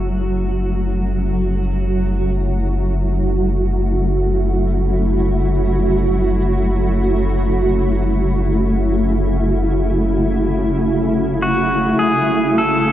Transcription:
Already playing: F#1 C#3 F#3 A3 E4 F#4
11.42 F#4
11.98 F#1 G#4
12.58 A4

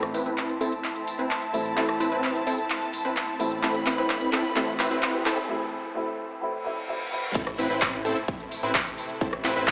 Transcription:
Already playing: A1 A2 E3 A3 C4 E4 A5, riser
0.03 cross-stick, closed hi-hat
0.14 A1 C4 E4 B4, open hi-hat
0.26 A1 C4 E4 B4, closed hi-hat
0.38 clap, closed hi-hat
0.49 closed hi-hat
0.61 A1 C4 E4 A4, open hi-hat
0.72 closed hi-hat
0.84 clap, closed hi-hat
0.96 closed hi-hat
1.07 open hi-hat
1.19 A1 C4 E4 B4, closed hi-hat
1.31 clap, closed hi-hat
1.42 closed hi-hat
1.53 A2 E3 A3 C4 E4, open hi-hat
1.66 closed hi-hat
1.76 A1 A2 E3 A3 C4 E4 A4, clap, closed hi-hat
1.89 cross-stick, closed hi-hat
2.00 A1 C4 E4 B4, open hi-hat
2.12 A1 C4 E4 B4, closed hi-hat
2.24 clap, closed hi-hat
2.35 closed hi-hat
2.47 A1 C4 E4 A4, open hi-hat
2.58 closed hi-hat
2.70 clap, closed hi-hat
2.82 closed hi-hat
2.93 open hi-hat
3.05 A1 C4 E4 B4, closed hi-hat
3.17 clap, closed hi-hat
3.28 closed hi-hat
3.39 A2 E3 A3 C4 E4, open hi-hat
3.51 closed hi-hat
3.62 A1 A2 E3 A3 C4 E4 A4 B5, clap, closed hi-hat
3.75 closed hi-hat
3.86 A1 C4 E4 B4, clap, open hi-hat
3.98 A1 C4 E4 B4, closed hi-hat
4.10 clap, closed hi-hat
4.21 closed hi-hat
4.33 A1 C4 E4 A4, clap, open hi-hat
4.44 closed hi-hat
4.55 A1 A2 E3 A3 C4 E4 A4, clap, closed hi-hat
4.68 closed hi-hat
4.79 A1 C4 E4 B4, clap, open hi-hat
4.91 A1 C4 E4 B4, closed hi-hat
5.03 clap, closed hi-hat
5.14 closed hi-hat
5.26 A1 C4 E4 A4, clap, open hi-hat
5.38 closed hi-hat
5.48 A2 E3 A3 C4 E4
5.94 A2 E3 A3 C4 E4
6.41 A2 E3 A3 C4 E4, reverse cymbal
6.64 A2 E3 A3 C4 E4
6.88 A2 E3 A3 C4 E4
7.11 A2 E3 A3 C4 E4
7.35 A1 C3 A3 C4 E4 A4, kick, closed hi-hat, crash, ride
7.47 cross-stick, closed hi-hat
7.58 A1 C4 E4 B4, open hi-hat
7.70 A1 C4 E4 B4, closed hi-hat
7.82 kick, clap, closed hi-hat, ride
7.93 closed hi-hat
8.05 A1 C4 E4 A4, open hi-hat
8.17 closed hi-hat
8.28 kick, closed hi-hat, ride
8.40 closed hi-hat
8.52 open hi-hat
8.63 A1 C4 E4 B4, closed hi-hat
8.75 kick, clap, closed hi-hat, ride
8.86 closed hi-hat
8.98 open hi-hat
9.10 closed hi-hat
9.21 A1 C4 E4 A4, kick, closed hi-hat, ride
9.33 cross-stick, closed hi-hat
9.44 A1 C4 E4 B4, clap, open hi-hat
9.56 A1 C4 E4 B4, closed hi-hat
9.68 kick, clap, closed hi-hat, ride

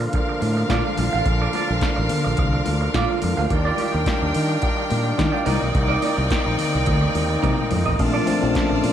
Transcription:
Already playing: D3 F3 A#3 F4
0.01 muted clean electric guitar stroke
0.13 D4 A#4 F5, muted clean electric guitar stroke, kick, closed hi-hat, muted conga
0.29 muted clean electric guitar stroke
0.41 A2, open hi-hat, muted conga
0.57 muted clean electric guitar stroke
0.69 A#2 F4 A4 D5, kick, snare, closed hi-hat, high conga
0.85 muted clean electric guitar stroke
0.97 A#1, muted clean electric guitar stroke, open hi-hat, high conga
1.13 A1 F4 A4 F5
1.26 A#1, muted clean electric guitar stroke, kick, closed hi-hat
1.42 F4 A4 D5
1.53 F4 A4 D5, open hi-hat, muted conga
1.69 A#1, muted clean electric guitar stroke
1.81 muted clean electric guitar stroke, kick, snare, closed hi-hat, high conga
1.96 A1, muted clean electric guitar stroke
2.09 open hi-hat, low conga
2.24 A#1, muted clean electric guitar stroke
2.37 C2, muted clean electric guitar stroke, kick, closed hi-hat, low conga
2.53 muted clean electric guitar stroke
2.65 D2, open hi-hat, muted conga
2.81 muted clean electric guitar stroke
2.94 A#2 F4 A4 D5, kick, snare, closed hi-hat, high conga
3.10 muted clean electric guitar stroke
3.22 F2, muted clean electric guitar stroke, open hi-hat, high conga
3.37 D2 F4 A4 F5
3.50 D#2 D#3 G3 D4 F4 A#4 G5, muted clean electric guitar stroke, kick, closed hi-hat
3.65 F4 G4 D5
3.78 F4 G4 D5, open hi-hat, muted conga
3.93 D#2, muted clean electric guitar stroke
4.06 muted clean electric guitar stroke, kick, snare, closed hi-hat, high conga
4.21 D#2, muted clean electric guitar stroke
4.34 D#3, open hi-hat
4.49 muted clean electric guitar stroke
4.62 muted clean electric guitar stroke, kick, closed hi-hat, muted conga
4.77 muted clean electric guitar stroke
4.90 A#2, open hi-hat, muted conga
5.04 muted clean electric guitar stroke
5.18 D#3, muted clean electric guitar stroke, kick, snare, closed hi-hat, high conga
5.32 F4 G4 D5
5.45 C2 D#3 A#3 C4 D#4 A#4 D5 G5, open hi-hat, high conga
5.61 B1, muted clean electric guitar stroke
5.74 C2, muted clean electric guitar stroke, kick, closed hi-hat
5.88 D#4 A#4 D5
6.02 D#4 A#4 D5, open hi-hat, muted conga
6.17 C2, muted clean electric guitar stroke
6.30 muted clean electric guitar stroke, kick, snare, closed hi-hat, high conga
6.45 A#1, muted clean electric guitar stroke
6.58 open hi-hat, low conga
6.73 C2, muted clean electric guitar stroke
6.86 D2, muted clean electric guitar stroke, kick, closed hi-hat, low conga
7.01 muted clean electric guitar stroke
7.15 D#2, open hi-hat, muted conga
7.29 muted clean electric guitar stroke
7.42 C3 D#4 A#4 D5, kick, closed hi-hat, high tom, high conga
7.58 muted clean electric guitar stroke, mid tom
7.71 F2, muted clean electric guitar stroke, mid tom, open hi-hat, high conga
7.86 A1 D#4 A#4 D#5, floor tom
7.98 A#1 A#2 F3 A3 C4 D4 F4 D5 A5, muted clean electric guitar stroke, kick, crash
8.14 F4 A4 D5
8.26 F3 A3 C4 D4 F4 A4 D5, open hi-hat, muted conga
8.41 A#1 F3 A3 C4 C#4, muted clean electric guitar stroke
8.49 D4
8.54 muted clean electric guitar stroke, kick, snare, closed hi-hat, high conga
8.70 A#1, muted clean electric guitar stroke
8.84 A#2, open hi-hat

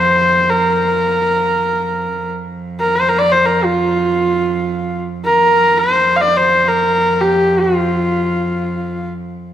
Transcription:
Already playing: F2 C5
0.50 A#4
2.16 F2
2.80 A#4
2.95 C5
3.09 A#4
3.19 D5
3.32 C5
3.46 A#4
3.64 F4
5.25 A#4
5.78 C5
5.94 F2
6.16 F5
6.21 D5
6.37 C5
6.68 A#4
7.21 G4
7.60 F4

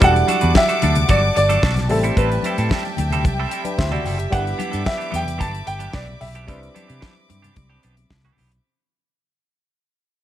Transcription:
0.01 E1 G3 D4 E4 F#4 A4 F#5 A5 D6, kick, closed hi-hat, muted conga
0.15 muted clean electric guitar stroke, closed hi-hat
0.27 G3 D4 F#4 A4, closed hi-hat, high conga
0.41 E2 G3 D4 F#4 B4, closed hi-hat
0.54 E5, kick, snare, muted conga, high conga
0.68 G3 D4 F#4 A4, closed hi-hat
0.82 D2 G3 D4 F#4 A4, closed hi-hat, high conga
0.95 muted clean electric guitar stroke, closed hi-hat, low conga
1.09 G1 G3 D4 F#4 A4 D5, kick, closed hi-hat, muted conga, high conga
1.22 muted clean electric guitar stroke
1.36 G1 D5, muted clean electric guitar stroke, closed hi-hat, muted conga
1.49 G3 D4 F#4 A4, closed hi-hat, high conga
1.62 B1 G3 D4 F#4 A4, kick, snare
1.75 muted clean electric guitar stroke, snare, closed hi-hat, low conga
1.88 A1 G3 A3 C4 E4 G4 A4 E5 G5, muted clean electric guitar stroke, open hi-hat, muted conga, low conga
2.03 G3 C4 E4 A4, closed hi-hat
2.17 A1 G3 C4 E4 A4 B4, kick, closed hi-hat
2.31 muted clean electric guitar stroke, closed hi-hat
2.43 G3 C4 E4 A4, closed hi-hat, muted conga, high conga
2.58 A2 G3 C4 E4 A4, closed hi-hat
2.69 G3 C4 E4 A4, kick, snare, muted conga, high conga
2.84 muted clean electric guitar stroke, closed hi-hat
2.97 D2, muted clean electric guitar stroke, closed hi-hat, muted conga, high conga
3.11 G3 C4 E4 A4, closed hi-hat, low conga
3.24 C2, kick, closed hi-hat, muted conga, high conga
3.40 G3 C4 E4 A4
3.51 G3 C4 E4 A4, closed hi-hat
3.65 D4 B4, muted clean electric guitar stroke, closed hi-hat, high conga
3.78 D2 E4 C5 E5, muted clean electric guitar stroke, kick, snare
3.91 G3 C4 E4 F#4 A4 D5, low conga
4.05 F#1 G3 C4 E4 A4 G5, open hi-hat, low conga
4.18 G4 E5, muted clean electric guitar stroke, closed hi-hat
4.30 G1 E3 G3 B3 D4 E4 G4 A4 F#5 B5 D6, kick, closed hi-hat, muted conga
4.40 B4
4.45 muted clean electric guitar stroke, closed hi-hat
4.58 E3 B3 D4 G4, closed hi-hat, muted conga, high conga
4.71 G2 E3 B3 D4 A4, closed hi-hat
4.84 E5, muted clean electric guitar stroke, kick, snare, high conga
4.98 E3 B3 D4 G4, closed hi-hat
5.11 E2 E3 B3 D4 G4, closed hi-hat, muted conga, high conga
5.15 G5
5.25 muted clean electric guitar stroke, closed hi-hat, low conga
5.38 G1 E3 B3 D4 G4 A5, kick, closed hi-hat, muted conga, high conga
5.52 muted clean electric guitar stroke, closed hi-hat
5.66 G1 G5, muted clean electric guitar stroke, closed hi-hat, muted conga
5.79 E3 B3 D4 G4, closed hi-hat, high conga
5.93 B1 E3 B3 D4 G4 D5, kick, snare
6.07 muted clean electric guitar stroke, low conga
6.21 B1 E5, muted clean electric guitar stroke, open hi-hat, low conga
6.35 E3 B3 D4 G4, closed hi-hat
6.46 C2 E3 G3 B3 C4 D4 E4 G4 B4 D6, kick, closed hi-hat, muted conga
6.61 muted clean electric guitar stroke, closed hi-hat
6.74 E3 B3 D4 G4, closed hi-hat, muted conga, high conga
6.88 C3 E3 B3 D4 G4, closed hi-hat
7.00 E3 B3 D4 G4, kick, snare, muted conga, high conga
7.16 muted clean electric guitar stroke
7.29 G2, muted clean electric guitar stroke, closed hi-hat, high conga
7.42 E3 B3 D4 G4, closed hi-hat, low conga
7.56 C2, muted clean electric guitar stroke, kick, closed hi-hat, muted conga, high conga
7.70 E3 B3 D4 G4
7.82 B1 E3 B3 D4 G4, closed hi-hat
7.97 muted clean electric guitar stroke, closed hi-hat, high conga
8.10 C2, muted clean electric guitar stroke, kick, snare
8.23 E3 B3 D4 G4, closed hi-hat, low conga
8.37 B1 E3 B3 D4 G4, open hi-hat, muted conga, low conga
8.52 closed hi-hat

